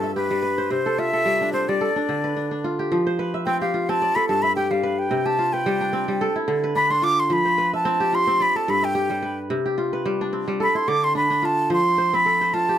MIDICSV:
0, 0, Header, 1, 3, 480
1, 0, Start_track
1, 0, Tempo, 550459
1, 620, Time_signature, 4, 2, 24, 8
1, 11148, End_track
2, 0, Start_track
2, 0, Title_t, "Flute"
2, 0, Program_c, 0, 73
2, 0, Note_on_c, 0, 69, 76
2, 126, Note_off_c, 0, 69, 0
2, 132, Note_on_c, 0, 71, 80
2, 619, Note_on_c, 0, 72, 89
2, 632, Note_off_c, 0, 71, 0
2, 862, Note_on_c, 0, 76, 104
2, 875, Note_off_c, 0, 72, 0
2, 1328, Note_off_c, 0, 76, 0
2, 1333, Note_on_c, 0, 72, 85
2, 1471, Note_on_c, 0, 74, 72
2, 1484, Note_off_c, 0, 72, 0
2, 2300, Note_off_c, 0, 74, 0
2, 3015, Note_on_c, 0, 79, 88
2, 3139, Note_off_c, 0, 79, 0
2, 3148, Note_on_c, 0, 77, 79
2, 3396, Note_on_c, 0, 81, 96
2, 3409, Note_off_c, 0, 77, 0
2, 3621, Note_on_c, 0, 83, 87
2, 3634, Note_off_c, 0, 81, 0
2, 3732, Note_off_c, 0, 83, 0
2, 3737, Note_on_c, 0, 81, 91
2, 3856, Note_on_c, 0, 83, 104
2, 3869, Note_off_c, 0, 81, 0
2, 3971, Note_off_c, 0, 83, 0
2, 3976, Note_on_c, 0, 79, 85
2, 4106, Note_on_c, 0, 77, 75
2, 4119, Note_off_c, 0, 79, 0
2, 4348, Note_on_c, 0, 79, 80
2, 4361, Note_off_c, 0, 77, 0
2, 4586, Note_on_c, 0, 81, 92
2, 4599, Note_off_c, 0, 79, 0
2, 4821, Note_on_c, 0, 79, 92
2, 4834, Note_off_c, 0, 81, 0
2, 5541, Note_off_c, 0, 79, 0
2, 5893, Note_on_c, 0, 83, 106
2, 6024, Note_on_c, 0, 84, 93
2, 6037, Note_off_c, 0, 83, 0
2, 6136, Note_on_c, 0, 86, 115
2, 6149, Note_off_c, 0, 84, 0
2, 6275, Note_on_c, 0, 84, 95
2, 6288, Note_off_c, 0, 86, 0
2, 6389, Note_on_c, 0, 83, 101
2, 6402, Note_off_c, 0, 84, 0
2, 6750, Note_off_c, 0, 83, 0
2, 6757, Note_on_c, 0, 81, 93
2, 7105, Note_on_c, 0, 84, 107
2, 7118, Note_off_c, 0, 81, 0
2, 7343, Note_on_c, 0, 83, 95
2, 7356, Note_off_c, 0, 84, 0
2, 7468, Note_on_c, 0, 81, 77
2, 7481, Note_off_c, 0, 83, 0
2, 7584, Note_on_c, 0, 83, 85
2, 7598, Note_off_c, 0, 81, 0
2, 7711, Note_on_c, 0, 79, 89
2, 7725, Note_off_c, 0, 83, 0
2, 8186, Note_off_c, 0, 79, 0
2, 9268, Note_on_c, 0, 83, 90
2, 9383, Note_on_c, 0, 84, 84
2, 9396, Note_off_c, 0, 83, 0
2, 9489, Note_on_c, 0, 86, 102
2, 9503, Note_off_c, 0, 84, 0
2, 9627, Note_on_c, 0, 84, 92
2, 9640, Note_off_c, 0, 86, 0
2, 9731, Note_off_c, 0, 84, 0
2, 9736, Note_on_c, 0, 83, 88
2, 9986, Note_on_c, 0, 81, 93
2, 9999, Note_off_c, 0, 83, 0
2, 10219, Note_off_c, 0, 81, 0
2, 10228, Note_on_c, 0, 84, 102
2, 10593, Note_on_c, 0, 83, 106
2, 10606, Note_off_c, 0, 84, 0
2, 10933, Note_on_c, 0, 81, 100
2, 10946, Note_off_c, 0, 83, 0
2, 11148, Note_off_c, 0, 81, 0
2, 11148, End_track
3, 0, Start_track
3, 0, Title_t, "Kora"
3, 0, Program_c, 1, 46
3, 0, Note_on_c, 1, 43, 72
3, 0, Note_on_c, 1, 60, 62
3, 0, Note_on_c, 1, 67, 52
3, 0, Note_on_c, 1, 74, 58
3, 30, Note_on_c, 1, 76, 53
3, 137, Note_off_c, 1, 67, 0
3, 141, Note_on_c, 1, 67, 53
3, 266, Note_on_c, 1, 55, 57
3, 371, Note_on_c, 1, 71, 63
3, 423, Note_off_c, 1, 60, 0
3, 505, Note_on_c, 1, 72, 59
3, 614, Note_on_c, 1, 48, 65
3, 624, Note_off_c, 1, 74, 0
3, 664, Note_off_c, 1, 43, 0
3, 664, Note_off_c, 1, 55, 0
3, 749, Note_on_c, 1, 69, 57
3, 858, Note_on_c, 1, 65, 58
3, 910, Note_off_c, 1, 76, 0
3, 984, Note_off_c, 1, 69, 0
3, 987, Note_on_c, 1, 69, 54
3, 1094, Note_on_c, 1, 55, 67
3, 1231, Note_on_c, 1, 62, 53
3, 1338, Note_on_c, 1, 60, 54
3, 1372, Note_off_c, 1, 67, 0
3, 1390, Note_off_c, 1, 71, 0
3, 1461, Note_off_c, 1, 55, 0
3, 1471, Note_on_c, 1, 55, 62
3, 1541, Note_off_c, 1, 72, 0
3, 1574, Note_off_c, 1, 69, 0
3, 1577, Note_on_c, 1, 69, 60
3, 1625, Note_off_c, 1, 48, 0
3, 1625, Note_off_c, 1, 55, 0
3, 1706, Note_off_c, 1, 62, 0
3, 1709, Note_on_c, 1, 62, 56
3, 1820, Note_on_c, 1, 50, 62
3, 1952, Note_on_c, 1, 71, 57
3, 2005, Note_off_c, 1, 60, 0
3, 2059, Note_off_c, 1, 62, 0
3, 2062, Note_on_c, 1, 62, 57
3, 2178, Note_off_c, 1, 65, 0
3, 2187, Note_off_c, 1, 62, 0
3, 2191, Note_on_c, 1, 62, 56
3, 2305, Note_on_c, 1, 65, 59
3, 2435, Note_on_c, 1, 67, 59
3, 2543, Note_on_c, 1, 53, 83
3, 2584, Note_off_c, 1, 50, 0
3, 2674, Note_on_c, 1, 72, 65
3, 2726, Note_off_c, 1, 69, 0
3, 2726, Note_off_c, 1, 71, 0
3, 2782, Note_on_c, 1, 71, 70
3, 2912, Note_on_c, 1, 76, 63
3, 2965, Note_off_c, 1, 65, 0
3, 3022, Note_on_c, 1, 60, 81
3, 3149, Note_off_c, 1, 67, 0
3, 3153, Note_on_c, 1, 67, 64
3, 3261, Note_on_c, 1, 65, 63
3, 3313, Note_off_c, 1, 76, 0
3, 3388, Note_off_c, 1, 60, 0
3, 3392, Note_on_c, 1, 60, 77
3, 3444, Note_off_c, 1, 71, 0
3, 3504, Note_on_c, 1, 74, 70
3, 3542, Note_off_c, 1, 53, 0
3, 3628, Note_on_c, 1, 69, 62
3, 3655, Note_off_c, 1, 62, 0
3, 3709, Note_off_c, 1, 72, 0
3, 3742, Note_on_c, 1, 43, 77
3, 3867, Note_on_c, 1, 76, 62
3, 3919, Note_off_c, 1, 65, 0
3, 3978, Note_off_c, 1, 67, 0
3, 3982, Note_on_c, 1, 67, 67
3, 4105, Note_on_c, 1, 55, 59
3, 4215, Note_on_c, 1, 71, 75
3, 4267, Note_off_c, 1, 60, 0
3, 4453, Note_on_c, 1, 48, 70
3, 4470, Note_off_c, 1, 74, 0
3, 4499, Note_off_c, 1, 43, 0
3, 4499, Note_off_c, 1, 55, 0
3, 4579, Note_off_c, 1, 67, 0
3, 4583, Note_on_c, 1, 67, 66
3, 4697, Note_on_c, 1, 65, 63
3, 4749, Note_off_c, 1, 76, 0
3, 4778, Note_off_c, 1, 69, 0
3, 4825, Note_off_c, 1, 71, 0
3, 4828, Note_on_c, 1, 71, 62
3, 4936, Note_on_c, 1, 55, 82
3, 5065, Note_on_c, 1, 62, 70
3, 5170, Note_on_c, 1, 60, 72
3, 5223, Note_off_c, 1, 71, 0
3, 5293, Note_off_c, 1, 55, 0
3, 5303, Note_on_c, 1, 55, 68
3, 5416, Note_on_c, 1, 69, 74
3, 5457, Note_off_c, 1, 48, 0
3, 5457, Note_off_c, 1, 55, 0
3, 5543, Note_on_c, 1, 64, 57
3, 5595, Note_off_c, 1, 65, 0
3, 5648, Note_on_c, 1, 50, 80
3, 5787, Note_on_c, 1, 71, 69
3, 5814, Note_off_c, 1, 67, 0
3, 5839, Note_off_c, 1, 60, 0
3, 5887, Note_off_c, 1, 62, 0
3, 5890, Note_on_c, 1, 62, 67
3, 6015, Note_off_c, 1, 62, 0
3, 6018, Note_on_c, 1, 62, 67
3, 6123, Note_on_c, 1, 65, 69
3, 6175, Note_off_c, 1, 64, 0
3, 6365, Note_on_c, 1, 53, 79
3, 6415, Note_off_c, 1, 50, 0
3, 6499, Note_on_c, 1, 72, 63
3, 6551, Note_off_c, 1, 71, 0
3, 6565, Note_off_c, 1, 69, 0
3, 6610, Note_on_c, 1, 71, 73
3, 6744, Note_on_c, 1, 76, 64
3, 6797, Note_off_c, 1, 65, 0
3, 6847, Note_on_c, 1, 60, 85
3, 6979, Note_on_c, 1, 67, 71
3, 7087, Note_on_c, 1, 65, 57
3, 7140, Note_off_c, 1, 76, 0
3, 7211, Note_off_c, 1, 60, 0
3, 7215, Note_on_c, 1, 60, 74
3, 7267, Note_off_c, 1, 71, 0
3, 7327, Note_on_c, 1, 74, 65
3, 7374, Note_off_c, 1, 53, 0
3, 7460, Note_on_c, 1, 69, 63
3, 7483, Note_off_c, 1, 62, 0
3, 7534, Note_off_c, 1, 72, 0
3, 7571, Note_on_c, 1, 43, 81
3, 7695, Note_on_c, 1, 76, 58
3, 7748, Note_off_c, 1, 65, 0
3, 7800, Note_off_c, 1, 67, 0
3, 7804, Note_on_c, 1, 67, 75
3, 7934, Note_on_c, 1, 55, 65
3, 8044, Note_on_c, 1, 71, 68
3, 8096, Note_off_c, 1, 60, 0
3, 8285, Note_on_c, 1, 48, 74
3, 8294, Note_off_c, 1, 74, 0
3, 8334, Note_off_c, 1, 43, 0
3, 8334, Note_off_c, 1, 55, 0
3, 8417, Note_off_c, 1, 67, 0
3, 8420, Note_on_c, 1, 67, 56
3, 8526, Note_on_c, 1, 65, 64
3, 8578, Note_off_c, 1, 76, 0
3, 8609, Note_off_c, 1, 69, 0
3, 8655, Note_off_c, 1, 71, 0
3, 8658, Note_on_c, 1, 71, 62
3, 8768, Note_on_c, 1, 55, 76
3, 8904, Note_on_c, 1, 62, 65
3, 9005, Note_on_c, 1, 60, 63
3, 9058, Note_off_c, 1, 71, 0
3, 9125, Note_off_c, 1, 55, 0
3, 9136, Note_on_c, 1, 55, 68
3, 9244, Note_on_c, 1, 69, 68
3, 9295, Note_off_c, 1, 48, 0
3, 9295, Note_off_c, 1, 55, 0
3, 9373, Note_on_c, 1, 64, 61
3, 9425, Note_off_c, 1, 65, 0
3, 9486, Note_on_c, 1, 50, 78
3, 9652, Note_off_c, 1, 67, 0
3, 9720, Note_off_c, 1, 62, 0
3, 9723, Note_on_c, 1, 62, 59
3, 9853, Note_off_c, 1, 62, 0
3, 9856, Note_on_c, 1, 62, 69
3, 9962, Note_on_c, 1, 65, 68
3, 10015, Note_off_c, 1, 64, 0
3, 10202, Note_on_c, 1, 53, 72
3, 10203, Note_on_c, 1, 72, 64
3, 10256, Note_off_c, 1, 50, 0
3, 10393, Note_off_c, 1, 69, 0
3, 10444, Note_off_c, 1, 72, 0
3, 10447, Note_on_c, 1, 72, 65
3, 10575, Note_off_c, 1, 60, 0
3, 10581, Note_on_c, 1, 60, 76
3, 10688, Note_on_c, 1, 69, 61
3, 10819, Note_off_c, 1, 72, 0
3, 10823, Note_on_c, 1, 72, 58
3, 10928, Note_off_c, 1, 65, 0
3, 10931, Note_on_c, 1, 65, 74
3, 11066, Note_on_c, 1, 67, 59
3, 11148, Note_off_c, 1, 53, 0
3, 11148, Note_off_c, 1, 60, 0
3, 11148, Note_off_c, 1, 62, 0
3, 11148, Note_off_c, 1, 65, 0
3, 11148, Note_off_c, 1, 67, 0
3, 11148, Note_off_c, 1, 69, 0
3, 11148, Note_off_c, 1, 72, 0
3, 11148, End_track
0, 0, End_of_file